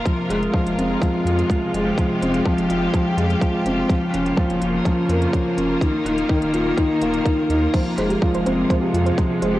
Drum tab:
CC |----------------|----------------|----------------|----------------|
HH |x-xx-xx-x-xxx-x-|x-xx-xx-x-xxx-x-|x-xx-xx-x-xxx-x-|x-xx-xx-x-xxx-x-|
BD |o---o---o---o---|o---o---o---o---|o---o---o---o---|o---o---o---o---|

CC |x---------------|
HH |x-xx-xx-x-xxx-x-|
BD |o---o---o---o---|